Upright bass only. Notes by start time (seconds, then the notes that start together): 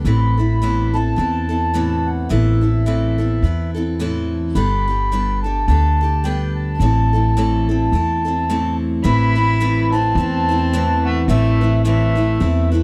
0.04 A1
1.18 E2
2.31 A1
3.42 E2
4.55 G1
5.68 D2
6.80 A1
7.92 E2
9.05 A1
10.15 E2
11.28 A1
12.41 E2